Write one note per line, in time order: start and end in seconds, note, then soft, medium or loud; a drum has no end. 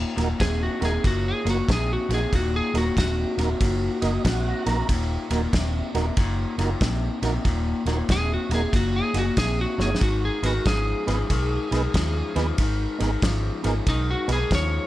0.00 0.13 D#2 medium
0.00 0.13 A#2 medium
0.16 0.32 D#1 medium
0.16 0.37 D#2 medium
0.16 0.37 A#2 medium
0.16 0.29 A#3 medium
0.16 0.29 D#4 medium
0.16 0.29 F#4 medium
0.16 0.29 A#4 loud
0.16 snare soft
0.16 ride medium
0.39 0.67 D#1 medium
0.39 0.77 D#2 medium
0.39 0.77 C3 medium
0.39 0.61 G#4 loud
0.39 kick medium
0.39 snare medium
0.39 ride medium
0.63 0.83 F#4 medium
0.80 0.96 D#1 medium
0.80 1.01 D#2 medium
0.80 1.02 C3 medium
0.80 0.93 A#3 medium
0.80 0.93 D#4 medium
0.80 0.93 F#4 medium
0.80 0.93 A#4 medium
0.80 snare soft
0.80 ride medium
0.85 1.05 G#4 medium
1.04 1.31 F#1 medium
1.04 1.41 D#2 medium
1.04 1.41 A#2 medium
1.04 1.26 F#4 medium
1.04 kick medium
1.04 snare soft
1.04 ride medium
1.28 1.48 G#4 medium
1.45 1.60 F#1 medium
1.45 1.66 D#2 medium
1.45 1.66 A#2 medium
1.45 1.57 A#3 medium
1.45 1.57 D#4 medium
1.45 1.58 F#4 medium
1.45 1.57 A#4 medium
1.45 snare soft
1.45 ride medium
1.50 1.70 F#4 medium
1.68 1.95 A#1 medium
1.68 2.06 D#2 medium
1.68 2.06 C3 medium
1.68 kick medium
1.68 snare loud
1.68 ride medium
1.72 1.91 G#4 medium
1.93 2.12 F#4 medium
2.09 2.24 A#1 medium
2.09 2.30 D#2 medium
2.09 2.30 C3 medium
2.09 2.21 A#3 medium
2.09 2.21 D#4 medium
2.09 2.21 F#4 medium
2.09 2.22 G#4 medium
2.09 snare soft
2.09 ride medium
2.14 2.34 G#4 medium
2.33 2.59 D#1 medium
2.33 2.70 D#2 medium
2.33 2.70 A#2 medium
2.33 2.55 F#4 medium
2.33 kick medium
2.33 snare soft
2.33 ride medium
2.56 2.76 G#4 loud
2.74 2.88 D#1 medium
2.74 2.95 D#2 medium
2.74 2.95 A#2 medium
2.74 2.85 A#3 medium
2.74 2.86 D#4 medium
2.74 2.86 F#4 medium
2.74 2.97 F#4 medium
2.74 2.86 A#4 medium
2.74 snare soft
2.74 ride medium
2.97 3.23 D#1 medium
2.97 3.34 D#2 medium
2.97 3.34 C3 medium
2.97 4.86 F#4 medium
2.97 kick medium
2.97 snare loud
2.97 ride medium
3.37 3.52 D#1 medium
3.37 3.59 D#2 medium
3.37 3.59 C3 medium
3.37 3.49 A#3 medium
3.37 3.49 D#4 medium
3.37 3.49 F#4 medium
3.37 3.50 A#4 medium
3.37 snare soft
3.37 ride medium
3.60 3.87 F#1 medium
3.60 3.98 D#2 medium
3.60 3.98 A#2 medium
3.60 kick medium
3.60 snare soft
3.60 ride medium
4.01 4.17 F#1 medium
4.01 4.23 D#2 medium
4.01 4.23 A#2 medium
4.01 4.13 A#3 medium
4.01 4.13 D#4 medium
4.01 4.13 F#4 medium
4.01 4.14 A#4 medium
4.01 4.23 D#5 medium
4.01 snare soft
4.01 ride medium
4.24 4.52 A#1 medium
4.24 4.62 D#2 medium
4.24 4.63 C3 medium
4.24 4.63 F#5 medium
4.24 kick medium
4.24 snare loud
4.24 ride medium
4.66 4.81 A#1 medium
4.66 4.87 D#2 medium
4.66 4.87 C3 medium
4.66 4.78 A#3 medium
4.66 4.78 D#4 medium
4.66 4.78 F#4 medium
4.66 4.78 A#4 loud
4.66 4.88 A#5 medium
4.66 snare soft
4.66 ride medium
4.89 5.16 D#1 medium
4.89 5.27 D#2 medium
4.89 5.27 A#2 medium
4.89 kick medium
4.89 snare soft
4.89 ride loud
5.30 5.45 D#1 medium
5.30 5.51 D#2 medium
5.30 5.51 A#2 medium
5.30 5.42 A#3 medium
5.30 5.42 D#4 medium
5.30 5.42 F#4 medium
5.30 5.42 A#4 loud
5.30 snare soft
5.30 ride medium
5.52 5.80 D#1 medium
5.52 5.90 D#2 medium
5.52 5.90 C3 medium
5.52 kick medium
5.52 snare loud
5.52 ride medium
5.94 6.09 D#1 medium
5.94 6.15 D#2 medium
5.94 6.15 C3 medium
5.94 6.06 A#3 medium
5.94 6.06 D#4 medium
5.94 6.06 F#4 medium
5.94 6.06 A#4 loud
5.94 snare soft
5.94 ride medium
6.17 6.44 F#1 medium
6.17 6.54 D#2 medium
6.17 6.54 A#2 medium
6.17 kick medium
6.17 snare soft
6.17 ride medium
6.58 6.73 F#1 medium
6.58 6.79 D#2 medium
6.58 6.79 A#2 medium
6.58 6.70 A#3 medium
6.58 6.70 D#4 medium
6.58 6.70 F#4 medium
6.58 6.70 A#4 medium
6.58 snare soft
6.58 ride medium
6.81 7.08 A#1 medium
6.81 7.19 D#2 medium
6.81 7.19 C3 medium
6.81 kick medium
6.81 snare loud
6.81 ride medium
7.22 7.37 A#1 medium
7.22 7.43 D#2 medium
7.22 7.43 C3 medium
7.22 7.34 A#3 medium
7.22 7.34 D#4 medium
7.22 7.34 F#4 medium
7.22 7.34 A#4 medium
7.22 snare soft
7.22 ride medium
7.44 7.72 D#1 medium
7.44 7.82 D#2 medium
7.44 7.83 A#2 loud
7.44 kick medium
7.44 snare soft
7.44 ride medium
7.85 8.00 D#1 medium
7.85 8.07 D#2 medium
7.85 8.07 A#2 medium
7.85 7.98 A#3 medium
7.85 7.98 D#4 medium
7.85 7.98 F#4 medium
7.85 7.98 A#4 medium
7.85 snare soft
7.85 ride medium
8.09 8.36 D#1 medium
8.09 8.47 D#2 medium
8.09 8.47 C3 loud
8.09 8.31 G#4 loud
8.09 kick medium
8.09 snare loud
8.09 ride medium
8.34 8.53 F#4 medium
8.49 8.64 D#1 medium
8.49 8.71 D#2 medium
8.49 8.71 C3 medium
8.49 8.62 A#3 medium
8.49 8.62 D#4 medium
8.49 8.62 F#4 medium
8.49 8.63 A#4 medium
8.49 snare soft
8.49 ride medium
8.54 8.74 G#4 medium
8.73 9.00 F#1 medium
8.73 9.10 D#2 medium
8.73 9.11 A#2 medium
8.73 8.95 F#4 medium
8.73 kick medium
8.73 snare soft
8.73 ride medium
8.96 9.16 G#4 medium
9.14 9.29 F#1 medium
9.14 9.35 D#2 medium
9.14 9.35 A#2 medium
9.14 9.26 A#3 medium
9.14 9.26 D#4 medium
9.14 9.26 F#4 medium
9.14 9.26 G#4 medium
9.14 snare soft
9.14 ride medium
9.19 9.38 F#4 medium
9.37 9.64 A#1 loud
9.37 9.75 D#2 medium
9.37 9.75 C3 medium
9.37 9.59 G#4 medium
9.37 kick medium
9.37 snare loud
9.37 ride medium
9.61 9.81 F#4 medium
9.78 9.93 G1 medium
9.78 9.99 D#2 medium
9.78 9.99 C3 medium
9.78 9.90 A#3 medium
9.78 9.90 D#4 medium
9.78 9.90 F#4 medium
9.78 10.02 G#4 medium
9.78 9.90 C#5 medium
9.78 snare medium
9.95 snare medium
10.00 10.28 G#1 medium
10.00 10.38 G#2 medium
10.00 10.39 D#3 medium
10.00 10.23 F#4 medium
10.00 kick medium
10.00 snare soft
10.00 ride medium
10.25 10.45 G#4 medium
10.42 10.57 G#1 medium
10.42 10.63 G#2 medium
10.42 10.63 D#3 medium
10.42 10.54 B3 medium
10.42 10.54 D#4 medium
10.42 10.66 F#4 medium
10.42 10.54 G#4 medium
10.42 10.55 B4 medium
10.42 snare soft
10.42 ride medium
10.66 10.92 G#1 medium
10.66 11.03 G#2 medium
10.66 11.03 F3 medium
10.66 12.54 G#4 medium
10.66 kick medium
10.66 snare loud
10.66 ride medium
11.06 11.22 G#1 medium
11.06 11.28 G#2 medium
11.06 11.28 F3 medium
11.06 11.18 B3 medium
11.06 11.18 D#4 medium
11.06 11.19 G#4 medium
11.06 11.19 B4 medium
11.06 snare soft
11.06 ride medium
11.30 11.57 B1 medium
11.30 11.67 G#2 medium
11.30 11.67 D#3 loud
11.30 kick medium
11.30 snare soft
11.30 ride medium
11.71 11.86 B1 medium
11.71 11.92 G#2 medium
11.71 11.92 D#3 medium
11.71 11.83 B3 medium
11.71 11.83 D#4 medium
11.71 11.83 G#4 medium
11.71 11.83 B4 loud
11.71 snare soft
11.71 ride medium
11.94 12.21 D#2 medium
11.94 12.32 G#2 medium
11.94 12.32 F3 medium
11.94 kick medium
11.94 snare loud
11.94 ride medium
12.35 12.50 D#2 medium
12.35 12.56 G#2 medium
12.35 12.56 F3 medium
12.35 12.47 B3 medium
12.35 12.47 D#4 medium
12.35 12.47 G#4 medium
12.35 12.47 B4 loud
12.35 snare soft
12.35 ride medium
12.58 12.85 G#1 medium
12.58 12.96 G#2 medium
12.58 12.97 D#3 medium
12.58 kick medium
12.58 snare soft
12.58 ride medium
12.99 13.15 G#1 medium
12.99 13.20 G#2 medium
12.99 13.21 D#3 medium
12.99 13.10 B3 medium
12.99 13.11 D#4 medium
12.99 13.11 G#4 medium
12.99 13.11 A#4 loud
12.99 snare soft
12.99 ride medium
13.22 13.49 G#1 medium
13.22 13.60 G#2 medium
13.22 13.60 F3 medium
13.22 kick medium
13.22 snare loud
13.22 ride medium
13.63 13.79 G#1 medium
13.63 13.85 G#2 medium
13.63 13.85 F3 medium
13.63 13.75 B3 medium
13.63 13.75 D#4 medium
13.63 13.75 G#4 medium
13.63 13.75 A#4 loud
13.63 snare soft
13.63 ride medium
13.87 14.13 B1 medium
13.87 14.25 G#2 medium
13.87 14.25 D#3 loud
13.87 14.09 D#4 loud
13.87 kick medium
13.87 snare soft
13.87 ride medium
14.11 14.30 F#4 loud
14.28 14.43 B1 medium
14.28 14.49 G#2 medium
14.28 14.49 D#3 medium
14.28 14.39 B3 medium
14.28 14.39 D#4 medium
14.28 14.39 G#4 medium
14.28 14.40 B4 medium
14.28 snare soft
14.28 ride medium
14.32 14.52 G#4 medium
14.51 14.78 D#2 loud
14.51 14.87 G#2 medium
14.51 14.87 F3 medium
14.51 14.87 C#5 loud
14.51 kick medium
14.51 snare loud
14.51 ride medium